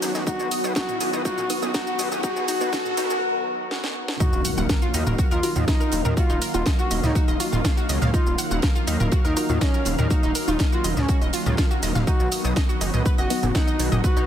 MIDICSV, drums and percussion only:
0, 0, Header, 1, 2, 480
1, 0, Start_track
1, 0, Key_signature, -6, "minor"
1, 0, Tempo, 491803
1, 263, Time_signature, 4, 2, 24, 8
1, 13923, End_track
2, 0, Start_track
2, 0, Title_t, "Drums"
2, 23, Note_on_c, 9, 46, 99
2, 23, Note_on_c, 9, 82, 76
2, 26, Note_on_c, 9, 38, 51
2, 31, Note_on_c, 9, 42, 68
2, 120, Note_off_c, 9, 46, 0
2, 120, Note_off_c, 9, 82, 0
2, 124, Note_off_c, 9, 38, 0
2, 129, Note_off_c, 9, 42, 0
2, 144, Note_on_c, 9, 38, 40
2, 146, Note_on_c, 9, 82, 33
2, 242, Note_off_c, 9, 38, 0
2, 243, Note_off_c, 9, 82, 0
2, 262, Note_on_c, 9, 36, 108
2, 263, Note_on_c, 9, 82, 49
2, 267, Note_on_c, 9, 42, 90
2, 359, Note_off_c, 9, 36, 0
2, 360, Note_off_c, 9, 82, 0
2, 364, Note_off_c, 9, 42, 0
2, 385, Note_on_c, 9, 82, 32
2, 483, Note_off_c, 9, 82, 0
2, 502, Note_on_c, 9, 46, 98
2, 502, Note_on_c, 9, 82, 79
2, 505, Note_on_c, 9, 42, 71
2, 600, Note_off_c, 9, 46, 0
2, 600, Note_off_c, 9, 82, 0
2, 602, Note_off_c, 9, 42, 0
2, 625, Note_on_c, 9, 82, 35
2, 723, Note_off_c, 9, 82, 0
2, 733, Note_on_c, 9, 38, 117
2, 742, Note_off_c, 9, 38, 0
2, 742, Note_on_c, 9, 36, 112
2, 742, Note_on_c, 9, 38, 107
2, 742, Note_on_c, 9, 82, 47
2, 744, Note_on_c, 9, 42, 89
2, 839, Note_off_c, 9, 36, 0
2, 840, Note_off_c, 9, 38, 0
2, 840, Note_off_c, 9, 82, 0
2, 841, Note_off_c, 9, 42, 0
2, 866, Note_on_c, 9, 45, 97
2, 866, Note_on_c, 9, 82, 32
2, 873, Note_on_c, 9, 42, 43
2, 963, Note_off_c, 9, 45, 0
2, 963, Note_off_c, 9, 82, 0
2, 971, Note_off_c, 9, 42, 0
2, 980, Note_on_c, 9, 42, 68
2, 982, Note_on_c, 9, 46, 94
2, 982, Note_on_c, 9, 82, 77
2, 1077, Note_off_c, 9, 42, 0
2, 1079, Note_off_c, 9, 46, 0
2, 1079, Note_off_c, 9, 82, 0
2, 1106, Note_on_c, 9, 82, 34
2, 1203, Note_off_c, 9, 82, 0
2, 1222, Note_on_c, 9, 36, 108
2, 1223, Note_on_c, 9, 82, 47
2, 1226, Note_on_c, 9, 42, 90
2, 1320, Note_off_c, 9, 36, 0
2, 1320, Note_off_c, 9, 82, 0
2, 1323, Note_off_c, 9, 42, 0
2, 1346, Note_on_c, 9, 42, 38
2, 1346, Note_on_c, 9, 45, 85
2, 1346, Note_on_c, 9, 82, 32
2, 1443, Note_off_c, 9, 42, 0
2, 1443, Note_off_c, 9, 45, 0
2, 1443, Note_off_c, 9, 82, 0
2, 1462, Note_on_c, 9, 46, 102
2, 1462, Note_on_c, 9, 82, 85
2, 1470, Note_on_c, 9, 42, 70
2, 1560, Note_off_c, 9, 46, 0
2, 1560, Note_off_c, 9, 82, 0
2, 1567, Note_off_c, 9, 42, 0
2, 1582, Note_on_c, 9, 42, 41
2, 1585, Note_on_c, 9, 82, 31
2, 1680, Note_off_c, 9, 42, 0
2, 1683, Note_off_c, 9, 82, 0
2, 1702, Note_on_c, 9, 36, 115
2, 1702, Note_on_c, 9, 38, 102
2, 1702, Note_on_c, 9, 82, 47
2, 1703, Note_off_c, 9, 38, 0
2, 1703, Note_on_c, 9, 38, 127
2, 1704, Note_on_c, 9, 42, 100
2, 1800, Note_off_c, 9, 36, 0
2, 1800, Note_off_c, 9, 82, 0
2, 1801, Note_off_c, 9, 38, 0
2, 1802, Note_off_c, 9, 42, 0
2, 1826, Note_on_c, 9, 82, 35
2, 1924, Note_off_c, 9, 82, 0
2, 1943, Note_on_c, 9, 46, 98
2, 1943, Note_on_c, 9, 82, 80
2, 1944, Note_on_c, 9, 42, 69
2, 2041, Note_off_c, 9, 46, 0
2, 2041, Note_off_c, 9, 82, 0
2, 2042, Note_off_c, 9, 42, 0
2, 2066, Note_on_c, 9, 82, 35
2, 2164, Note_off_c, 9, 82, 0
2, 2179, Note_on_c, 9, 42, 94
2, 2182, Note_on_c, 9, 36, 116
2, 2183, Note_on_c, 9, 82, 49
2, 2276, Note_off_c, 9, 42, 0
2, 2279, Note_off_c, 9, 36, 0
2, 2281, Note_off_c, 9, 82, 0
2, 2307, Note_on_c, 9, 82, 33
2, 2404, Note_off_c, 9, 82, 0
2, 2423, Note_on_c, 9, 46, 102
2, 2423, Note_on_c, 9, 82, 82
2, 2424, Note_on_c, 9, 42, 68
2, 2521, Note_off_c, 9, 46, 0
2, 2521, Note_off_c, 9, 82, 0
2, 2522, Note_off_c, 9, 42, 0
2, 2546, Note_on_c, 9, 82, 35
2, 2644, Note_off_c, 9, 82, 0
2, 2662, Note_on_c, 9, 36, 112
2, 2662, Note_on_c, 9, 38, 120
2, 2663, Note_off_c, 9, 38, 0
2, 2663, Note_on_c, 9, 38, 112
2, 2663, Note_on_c, 9, 82, 50
2, 2670, Note_on_c, 9, 42, 89
2, 2759, Note_off_c, 9, 36, 0
2, 2761, Note_off_c, 9, 38, 0
2, 2761, Note_off_c, 9, 82, 0
2, 2767, Note_off_c, 9, 42, 0
2, 2786, Note_on_c, 9, 45, 93
2, 2786, Note_on_c, 9, 82, 32
2, 2884, Note_off_c, 9, 45, 0
2, 2884, Note_off_c, 9, 82, 0
2, 2902, Note_on_c, 9, 42, 73
2, 2903, Note_on_c, 9, 46, 100
2, 2903, Note_on_c, 9, 82, 82
2, 2905, Note_on_c, 9, 38, 114
2, 3000, Note_off_c, 9, 42, 0
2, 3000, Note_off_c, 9, 46, 0
2, 3000, Note_off_c, 9, 82, 0
2, 3003, Note_off_c, 9, 38, 0
2, 3026, Note_on_c, 9, 82, 35
2, 3031, Note_on_c, 9, 42, 42
2, 3123, Note_off_c, 9, 82, 0
2, 3128, Note_off_c, 9, 42, 0
2, 3622, Note_on_c, 9, 38, 62
2, 3720, Note_off_c, 9, 38, 0
2, 3745, Note_on_c, 9, 38, 68
2, 3843, Note_off_c, 9, 38, 0
2, 3986, Note_on_c, 9, 38, 88
2, 4083, Note_off_c, 9, 38, 0
2, 4102, Note_on_c, 9, 36, 117
2, 4102, Note_on_c, 9, 42, 87
2, 4103, Note_on_c, 9, 82, 48
2, 4199, Note_off_c, 9, 42, 0
2, 4200, Note_off_c, 9, 36, 0
2, 4201, Note_off_c, 9, 82, 0
2, 4226, Note_on_c, 9, 82, 32
2, 4323, Note_off_c, 9, 82, 0
2, 4341, Note_on_c, 9, 42, 67
2, 4342, Note_on_c, 9, 46, 106
2, 4342, Note_on_c, 9, 82, 77
2, 4438, Note_off_c, 9, 42, 0
2, 4439, Note_off_c, 9, 46, 0
2, 4439, Note_off_c, 9, 82, 0
2, 4466, Note_on_c, 9, 82, 34
2, 4563, Note_off_c, 9, 82, 0
2, 4581, Note_on_c, 9, 38, 111
2, 4582, Note_off_c, 9, 38, 0
2, 4582, Note_on_c, 9, 36, 124
2, 4582, Note_on_c, 9, 38, 115
2, 4582, Note_on_c, 9, 82, 46
2, 4584, Note_on_c, 9, 42, 85
2, 4680, Note_off_c, 9, 36, 0
2, 4680, Note_off_c, 9, 38, 0
2, 4680, Note_off_c, 9, 82, 0
2, 4682, Note_off_c, 9, 42, 0
2, 4701, Note_on_c, 9, 42, 47
2, 4706, Note_on_c, 9, 82, 33
2, 4799, Note_off_c, 9, 42, 0
2, 4803, Note_off_c, 9, 82, 0
2, 4822, Note_on_c, 9, 46, 104
2, 4822, Note_on_c, 9, 82, 80
2, 4824, Note_on_c, 9, 42, 64
2, 4920, Note_off_c, 9, 46, 0
2, 4920, Note_off_c, 9, 82, 0
2, 4921, Note_off_c, 9, 42, 0
2, 4946, Note_on_c, 9, 45, 81
2, 4946, Note_on_c, 9, 82, 34
2, 5044, Note_off_c, 9, 45, 0
2, 5044, Note_off_c, 9, 82, 0
2, 5060, Note_on_c, 9, 42, 85
2, 5062, Note_on_c, 9, 36, 117
2, 5064, Note_on_c, 9, 82, 49
2, 5157, Note_off_c, 9, 42, 0
2, 5160, Note_off_c, 9, 36, 0
2, 5162, Note_off_c, 9, 82, 0
2, 5184, Note_on_c, 9, 42, 42
2, 5187, Note_on_c, 9, 82, 32
2, 5282, Note_off_c, 9, 42, 0
2, 5284, Note_off_c, 9, 82, 0
2, 5301, Note_on_c, 9, 42, 66
2, 5303, Note_on_c, 9, 46, 107
2, 5303, Note_on_c, 9, 82, 84
2, 5399, Note_off_c, 9, 42, 0
2, 5401, Note_off_c, 9, 46, 0
2, 5401, Note_off_c, 9, 82, 0
2, 5423, Note_on_c, 9, 42, 42
2, 5426, Note_on_c, 9, 45, 74
2, 5426, Note_on_c, 9, 82, 34
2, 5521, Note_off_c, 9, 42, 0
2, 5524, Note_off_c, 9, 45, 0
2, 5524, Note_off_c, 9, 82, 0
2, 5542, Note_on_c, 9, 36, 118
2, 5543, Note_on_c, 9, 38, 106
2, 5543, Note_on_c, 9, 82, 47
2, 5544, Note_off_c, 9, 38, 0
2, 5544, Note_on_c, 9, 38, 114
2, 5549, Note_on_c, 9, 42, 101
2, 5640, Note_off_c, 9, 36, 0
2, 5640, Note_off_c, 9, 82, 0
2, 5641, Note_off_c, 9, 38, 0
2, 5647, Note_off_c, 9, 42, 0
2, 5666, Note_on_c, 9, 82, 34
2, 5763, Note_off_c, 9, 82, 0
2, 5774, Note_on_c, 9, 42, 69
2, 5783, Note_on_c, 9, 46, 98
2, 5783, Note_on_c, 9, 82, 81
2, 5872, Note_off_c, 9, 42, 0
2, 5881, Note_off_c, 9, 46, 0
2, 5881, Note_off_c, 9, 82, 0
2, 5905, Note_on_c, 9, 45, 95
2, 5905, Note_on_c, 9, 82, 36
2, 6003, Note_off_c, 9, 45, 0
2, 6003, Note_off_c, 9, 82, 0
2, 6022, Note_on_c, 9, 36, 125
2, 6023, Note_on_c, 9, 82, 45
2, 6030, Note_on_c, 9, 42, 96
2, 6120, Note_off_c, 9, 36, 0
2, 6120, Note_off_c, 9, 82, 0
2, 6127, Note_off_c, 9, 42, 0
2, 6146, Note_on_c, 9, 82, 32
2, 6243, Note_off_c, 9, 82, 0
2, 6263, Note_on_c, 9, 46, 103
2, 6263, Note_on_c, 9, 82, 77
2, 6266, Note_on_c, 9, 42, 72
2, 6360, Note_off_c, 9, 46, 0
2, 6360, Note_off_c, 9, 82, 0
2, 6364, Note_off_c, 9, 42, 0
2, 6385, Note_on_c, 9, 82, 33
2, 6483, Note_off_c, 9, 82, 0
2, 6497, Note_on_c, 9, 38, 117
2, 6502, Note_on_c, 9, 36, 123
2, 6503, Note_off_c, 9, 38, 0
2, 6503, Note_on_c, 9, 38, 117
2, 6503, Note_on_c, 9, 82, 46
2, 6506, Note_on_c, 9, 42, 93
2, 6600, Note_off_c, 9, 36, 0
2, 6600, Note_off_c, 9, 38, 0
2, 6600, Note_off_c, 9, 82, 0
2, 6604, Note_off_c, 9, 42, 0
2, 6626, Note_on_c, 9, 82, 32
2, 6724, Note_off_c, 9, 82, 0
2, 6744, Note_on_c, 9, 42, 73
2, 6744, Note_on_c, 9, 46, 105
2, 6744, Note_on_c, 9, 82, 79
2, 6841, Note_off_c, 9, 42, 0
2, 6841, Note_off_c, 9, 46, 0
2, 6841, Note_off_c, 9, 82, 0
2, 6867, Note_on_c, 9, 45, 75
2, 6867, Note_on_c, 9, 82, 34
2, 6869, Note_on_c, 9, 38, 45
2, 6964, Note_off_c, 9, 45, 0
2, 6964, Note_off_c, 9, 82, 0
2, 6967, Note_off_c, 9, 38, 0
2, 6983, Note_on_c, 9, 36, 127
2, 6984, Note_on_c, 9, 82, 46
2, 6990, Note_on_c, 9, 42, 91
2, 7080, Note_off_c, 9, 36, 0
2, 7082, Note_off_c, 9, 82, 0
2, 7088, Note_off_c, 9, 42, 0
2, 7103, Note_on_c, 9, 42, 40
2, 7107, Note_on_c, 9, 82, 31
2, 7201, Note_off_c, 9, 42, 0
2, 7204, Note_off_c, 9, 82, 0
2, 7221, Note_on_c, 9, 42, 69
2, 7224, Note_on_c, 9, 46, 111
2, 7224, Note_on_c, 9, 82, 82
2, 7319, Note_off_c, 9, 42, 0
2, 7322, Note_off_c, 9, 46, 0
2, 7322, Note_off_c, 9, 82, 0
2, 7348, Note_on_c, 9, 45, 71
2, 7348, Note_on_c, 9, 82, 32
2, 7445, Note_off_c, 9, 45, 0
2, 7445, Note_off_c, 9, 82, 0
2, 7463, Note_on_c, 9, 36, 119
2, 7464, Note_on_c, 9, 38, 127
2, 7464, Note_on_c, 9, 42, 99
2, 7464, Note_on_c, 9, 82, 45
2, 7560, Note_off_c, 9, 36, 0
2, 7561, Note_off_c, 9, 42, 0
2, 7562, Note_off_c, 9, 38, 0
2, 7562, Note_off_c, 9, 82, 0
2, 7587, Note_on_c, 9, 82, 33
2, 7685, Note_off_c, 9, 82, 0
2, 7701, Note_on_c, 9, 38, 50
2, 7704, Note_on_c, 9, 46, 108
2, 7704, Note_on_c, 9, 82, 77
2, 7706, Note_on_c, 9, 42, 69
2, 7798, Note_off_c, 9, 38, 0
2, 7802, Note_off_c, 9, 46, 0
2, 7802, Note_off_c, 9, 82, 0
2, 7803, Note_off_c, 9, 42, 0
2, 7824, Note_on_c, 9, 38, 41
2, 7827, Note_on_c, 9, 45, 92
2, 7827, Note_on_c, 9, 82, 35
2, 7921, Note_off_c, 9, 38, 0
2, 7925, Note_off_c, 9, 45, 0
2, 7925, Note_off_c, 9, 82, 0
2, 7942, Note_on_c, 9, 36, 118
2, 7942, Note_on_c, 9, 42, 90
2, 7944, Note_on_c, 9, 82, 45
2, 8040, Note_off_c, 9, 36, 0
2, 8040, Note_off_c, 9, 42, 0
2, 8042, Note_off_c, 9, 82, 0
2, 8067, Note_on_c, 9, 82, 29
2, 8165, Note_off_c, 9, 82, 0
2, 8184, Note_on_c, 9, 46, 107
2, 8184, Note_on_c, 9, 82, 77
2, 8190, Note_on_c, 9, 42, 75
2, 8281, Note_off_c, 9, 46, 0
2, 8281, Note_off_c, 9, 82, 0
2, 8287, Note_off_c, 9, 42, 0
2, 8307, Note_on_c, 9, 82, 33
2, 8404, Note_off_c, 9, 82, 0
2, 8417, Note_on_c, 9, 42, 86
2, 8422, Note_on_c, 9, 36, 124
2, 8423, Note_on_c, 9, 38, 113
2, 8423, Note_on_c, 9, 82, 44
2, 8429, Note_off_c, 9, 38, 0
2, 8429, Note_on_c, 9, 38, 127
2, 8514, Note_off_c, 9, 42, 0
2, 8520, Note_off_c, 9, 36, 0
2, 8521, Note_off_c, 9, 82, 0
2, 8527, Note_off_c, 9, 38, 0
2, 8540, Note_on_c, 9, 42, 46
2, 8546, Note_on_c, 9, 82, 32
2, 8638, Note_off_c, 9, 42, 0
2, 8644, Note_off_c, 9, 82, 0
2, 8660, Note_on_c, 9, 42, 65
2, 8663, Note_on_c, 9, 46, 108
2, 8663, Note_on_c, 9, 82, 73
2, 8758, Note_off_c, 9, 42, 0
2, 8760, Note_off_c, 9, 46, 0
2, 8760, Note_off_c, 9, 82, 0
2, 8786, Note_on_c, 9, 45, 80
2, 8786, Note_on_c, 9, 82, 30
2, 8884, Note_off_c, 9, 45, 0
2, 8884, Note_off_c, 9, 82, 0
2, 8898, Note_on_c, 9, 42, 80
2, 8902, Note_on_c, 9, 36, 127
2, 8904, Note_on_c, 9, 82, 46
2, 8995, Note_off_c, 9, 42, 0
2, 9000, Note_off_c, 9, 36, 0
2, 9001, Note_off_c, 9, 82, 0
2, 9026, Note_on_c, 9, 82, 32
2, 9028, Note_on_c, 9, 42, 40
2, 9124, Note_off_c, 9, 82, 0
2, 9126, Note_off_c, 9, 42, 0
2, 9143, Note_on_c, 9, 46, 117
2, 9143, Note_on_c, 9, 82, 79
2, 9147, Note_on_c, 9, 42, 68
2, 9241, Note_off_c, 9, 46, 0
2, 9241, Note_off_c, 9, 82, 0
2, 9244, Note_off_c, 9, 42, 0
2, 9259, Note_on_c, 9, 42, 39
2, 9267, Note_on_c, 9, 45, 69
2, 9267, Note_on_c, 9, 82, 31
2, 9357, Note_off_c, 9, 42, 0
2, 9365, Note_off_c, 9, 45, 0
2, 9365, Note_off_c, 9, 82, 0
2, 9381, Note_on_c, 9, 42, 96
2, 9382, Note_on_c, 9, 36, 125
2, 9384, Note_on_c, 9, 38, 112
2, 9384, Note_on_c, 9, 82, 46
2, 9479, Note_off_c, 9, 42, 0
2, 9480, Note_off_c, 9, 36, 0
2, 9481, Note_off_c, 9, 82, 0
2, 9482, Note_off_c, 9, 38, 0
2, 9507, Note_on_c, 9, 82, 33
2, 9605, Note_off_c, 9, 82, 0
2, 9616, Note_on_c, 9, 42, 77
2, 9624, Note_on_c, 9, 46, 107
2, 9624, Note_on_c, 9, 82, 73
2, 9713, Note_off_c, 9, 42, 0
2, 9721, Note_off_c, 9, 46, 0
2, 9721, Note_off_c, 9, 82, 0
2, 9747, Note_on_c, 9, 45, 94
2, 9747, Note_on_c, 9, 82, 34
2, 9844, Note_off_c, 9, 45, 0
2, 9844, Note_off_c, 9, 82, 0
2, 9862, Note_on_c, 9, 36, 117
2, 9863, Note_on_c, 9, 82, 44
2, 9865, Note_on_c, 9, 42, 88
2, 9960, Note_off_c, 9, 36, 0
2, 9960, Note_off_c, 9, 82, 0
2, 9963, Note_off_c, 9, 42, 0
2, 9986, Note_on_c, 9, 82, 30
2, 10084, Note_off_c, 9, 82, 0
2, 10103, Note_on_c, 9, 46, 109
2, 10103, Note_on_c, 9, 82, 74
2, 10105, Note_on_c, 9, 42, 74
2, 10201, Note_off_c, 9, 46, 0
2, 10201, Note_off_c, 9, 82, 0
2, 10203, Note_off_c, 9, 42, 0
2, 10227, Note_on_c, 9, 82, 32
2, 10324, Note_off_c, 9, 82, 0
2, 10336, Note_on_c, 9, 38, 109
2, 10343, Note_on_c, 9, 36, 127
2, 10344, Note_off_c, 9, 38, 0
2, 10344, Note_on_c, 9, 38, 106
2, 10344, Note_on_c, 9, 42, 88
2, 10344, Note_on_c, 9, 82, 46
2, 10440, Note_off_c, 9, 36, 0
2, 10441, Note_off_c, 9, 38, 0
2, 10441, Note_off_c, 9, 82, 0
2, 10442, Note_off_c, 9, 42, 0
2, 10468, Note_on_c, 9, 82, 30
2, 10565, Note_off_c, 9, 82, 0
2, 10584, Note_on_c, 9, 42, 67
2, 10584, Note_on_c, 9, 46, 105
2, 10584, Note_on_c, 9, 82, 73
2, 10681, Note_off_c, 9, 46, 0
2, 10681, Note_off_c, 9, 82, 0
2, 10682, Note_off_c, 9, 42, 0
2, 10707, Note_on_c, 9, 45, 76
2, 10707, Note_on_c, 9, 82, 31
2, 10717, Note_on_c, 9, 38, 42
2, 10804, Note_off_c, 9, 45, 0
2, 10804, Note_off_c, 9, 82, 0
2, 10815, Note_off_c, 9, 38, 0
2, 10819, Note_on_c, 9, 42, 85
2, 10823, Note_on_c, 9, 36, 125
2, 10824, Note_on_c, 9, 82, 42
2, 10917, Note_off_c, 9, 42, 0
2, 10920, Note_off_c, 9, 36, 0
2, 10922, Note_off_c, 9, 82, 0
2, 10947, Note_on_c, 9, 42, 42
2, 10947, Note_on_c, 9, 82, 29
2, 11045, Note_off_c, 9, 42, 0
2, 11045, Note_off_c, 9, 82, 0
2, 11057, Note_on_c, 9, 42, 69
2, 11064, Note_on_c, 9, 46, 111
2, 11064, Note_on_c, 9, 82, 78
2, 11155, Note_off_c, 9, 42, 0
2, 11161, Note_off_c, 9, 46, 0
2, 11161, Note_off_c, 9, 82, 0
2, 11187, Note_on_c, 9, 45, 72
2, 11187, Note_on_c, 9, 82, 30
2, 11285, Note_off_c, 9, 45, 0
2, 11285, Note_off_c, 9, 82, 0
2, 11296, Note_on_c, 9, 38, 114
2, 11303, Note_on_c, 9, 36, 124
2, 11304, Note_off_c, 9, 38, 0
2, 11304, Note_on_c, 9, 38, 99
2, 11304, Note_on_c, 9, 42, 88
2, 11304, Note_on_c, 9, 82, 45
2, 11401, Note_off_c, 9, 36, 0
2, 11402, Note_off_c, 9, 38, 0
2, 11402, Note_off_c, 9, 42, 0
2, 11402, Note_off_c, 9, 82, 0
2, 11427, Note_on_c, 9, 82, 32
2, 11525, Note_off_c, 9, 82, 0
2, 11544, Note_on_c, 9, 46, 111
2, 11544, Note_on_c, 9, 82, 73
2, 11545, Note_on_c, 9, 38, 61
2, 11550, Note_on_c, 9, 42, 68
2, 11642, Note_off_c, 9, 46, 0
2, 11642, Note_off_c, 9, 82, 0
2, 11643, Note_off_c, 9, 38, 0
2, 11647, Note_off_c, 9, 42, 0
2, 11667, Note_on_c, 9, 45, 89
2, 11667, Note_on_c, 9, 82, 34
2, 11668, Note_on_c, 9, 38, 39
2, 11765, Note_off_c, 9, 45, 0
2, 11765, Note_off_c, 9, 82, 0
2, 11766, Note_off_c, 9, 38, 0
2, 11783, Note_on_c, 9, 36, 116
2, 11784, Note_on_c, 9, 42, 92
2, 11784, Note_on_c, 9, 82, 45
2, 11881, Note_off_c, 9, 36, 0
2, 11881, Note_off_c, 9, 42, 0
2, 11881, Note_off_c, 9, 82, 0
2, 11907, Note_on_c, 9, 82, 29
2, 12004, Note_off_c, 9, 82, 0
2, 12020, Note_on_c, 9, 42, 74
2, 12024, Note_on_c, 9, 46, 104
2, 12024, Note_on_c, 9, 82, 74
2, 12117, Note_off_c, 9, 42, 0
2, 12122, Note_off_c, 9, 46, 0
2, 12122, Note_off_c, 9, 82, 0
2, 12147, Note_on_c, 9, 82, 32
2, 12245, Note_off_c, 9, 82, 0
2, 12260, Note_on_c, 9, 38, 118
2, 12263, Note_on_c, 9, 36, 118
2, 12265, Note_off_c, 9, 38, 0
2, 12265, Note_on_c, 9, 38, 102
2, 12265, Note_on_c, 9, 82, 44
2, 12271, Note_on_c, 9, 42, 90
2, 12361, Note_off_c, 9, 36, 0
2, 12362, Note_off_c, 9, 38, 0
2, 12362, Note_off_c, 9, 82, 0
2, 12368, Note_off_c, 9, 42, 0
2, 12387, Note_on_c, 9, 82, 32
2, 12390, Note_on_c, 9, 42, 43
2, 12485, Note_off_c, 9, 82, 0
2, 12488, Note_off_c, 9, 42, 0
2, 12504, Note_on_c, 9, 42, 70
2, 12505, Note_on_c, 9, 46, 104
2, 12505, Note_on_c, 9, 82, 74
2, 12601, Note_off_c, 9, 42, 0
2, 12602, Note_off_c, 9, 46, 0
2, 12602, Note_off_c, 9, 82, 0
2, 12627, Note_on_c, 9, 45, 83
2, 12627, Note_on_c, 9, 82, 32
2, 12725, Note_off_c, 9, 45, 0
2, 12725, Note_off_c, 9, 82, 0
2, 12743, Note_on_c, 9, 36, 116
2, 12744, Note_on_c, 9, 82, 46
2, 12749, Note_on_c, 9, 42, 88
2, 12841, Note_off_c, 9, 36, 0
2, 12841, Note_off_c, 9, 82, 0
2, 12847, Note_off_c, 9, 42, 0
2, 12866, Note_on_c, 9, 42, 44
2, 12867, Note_on_c, 9, 82, 30
2, 12964, Note_off_c, 9, 42, 0
2, 12965, Note_off_c, 9, 82, 0
2, 12984, Note_on_c, 9, 42, 68
2, 12984, Note_on_c, 9, 46, 107
2, 12984, Note_on_c, 9, 82, 76
2, 13081, Note_off_c, 9, 42, 0
2, 13082, Note_off_c, 9, 46, 0
2, 13082, Note_off_c, 9, 82, 0
2, 13107, Note_on_c, 9, 45, 75
2, 13107, Note_on_c, 9, 82, 29
2, 13109, Note_on_c, 9, 42, 40
2, 13205, Note_off_c, 9, 45, 0
2, 13205, Note_off_c, 9, 82, 0
2, 13206, Note_off_c, 9, 42, 0
2, 13223, Note_on_c, 9, 36, 118
2, 13225, Note_on_c, 9, 38, 101
2, 13225, Note_on_c, 9, 82, 43
2, 13227, Note_on_c, 9, 42, 89
2, 13232, Note_off_c, 9, 38, 0
2, 13232, Note_on_c, 9, 38, 124
2, 13321, Note_off_c, 9, 36, 0
2, 13322, Note_off_c, 9, 82, 0
2, 13325, Note_off_c, 9, 42, 0
2, 13329, Note_off_c, 9, 38, 0
2, 13348, Note_on_c, 9, 82, 33
2, 13446, Note_off_c, 9, 82, 0
2, 13464, Note_on_c, 9, 46, 107
2, 13464, Note_on_c, 9, 82, 73
2, 13467, Note_on_c, 9, 42, 70
2, 13562, Note_off_c, 9, 46, 0
2, 13562, Note_off_c, 9, 82, 0
2, 13565, Note_off_c, 9, 42, 0
2, 13588, Note_on_c, 9, 45, 93
2, 13588, Note_on_c, 9, 82, 34
2, 13685, Note_off_c, 9, 45, 0
2, 13685, Note_off_c, 9, 82, 0
2, 13702, Note_on_c, 9, 42, 87
2, 13703, Note_on_c, 9, 36, 113
2, 13705, Note_on_c, 9, 82, 44
2, 13799, Note_off_c, 9, 42, 0
2, 13801, Note_off_c, 9, 36, 0
2, 13803, Note_off_c, 9, 82, 0
2, 13828, Note_on_c, 9, 82, 32
2, 13923, Note_off_c, 9, 82, 0
2, 13923, End_track
0, 0, End_of_file